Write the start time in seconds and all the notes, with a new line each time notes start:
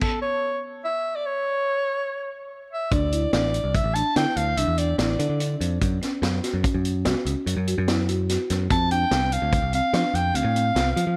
0.01 A4, kick, crash
0.22 C#5
0.85 E5
1.15 D5
1.26 C#5
2.72 E5
2.91 D2 D4 D5, kick, closed hi-hat
3.12 E4, closed hi-hat
3.33 A1 D4 D5, snare, closed hi-hat
3.54 closed hi-hat
3.64 C2
3.75 E5, kick, closed hi-hat
3.84 A1
3.94 D4 A5, closed hi-hat
4.16 D3 E4 G5, snare, closed hi-hat
4.36 D2 F5, closed hi-hat
4.57 C2 D4 E5, closed hi-hat
4.67 E2
4.78 D4 D5, closed hi-hat
4.98 A1 E4 D5, snare, closed hi-hat
5.19 D3, closed hi-hat
5.30 D3
5.40 D4, closed hi-hat
5.61 F2, closed hi-hat
5.81 F#2, kick, closed hi-hat
6.02 C#4, snare, closed hi-hat
6.22 F#2, snare, closed hi-hat
6.43 F#4, snare, closed hi-hat
6.54 F#2
6.63 C#4, kick, closed hi-hat
6.74 F#2
6.85 closed hi-hat
7.05 C#2 F#4, snare, closed hi-hat
7.25 C#2 C#4, closed hi-hat
7.46 F#2, closed hi-hat
7.57 F#2
7.67 F#4, closed hi-hat
7.78 F#2
7.88 E4, snare, closed hi-hat
8.09 F#4, closed hi-hat
8.29 F#4, snare, closed hi-hat
8.50 F#2, snare, closed hi-hat
8.70 F2 C4 A5, kick, closed hi-hat
8.91 D4 G5, closed hi-hat
9.11 C2 C4, snare, closed hi-hat
9.32 F5, closed hi-hat
9.42 D2
9.52 kick, closed hi-hat
9.62 C2
9.73 C4 F5, closed hi-hat
9.93 F3 D4, snare, closed hi-hat
10.14 F2 G5, closed hi-hat
10.34 D2 C4 F5, closed hi-hat
10.44 A2
10.56 C4, closed hi-hat
10.75 C2 F4, snare, closed hi-hat
10.96 F3, closed hi-hat
11.07 F3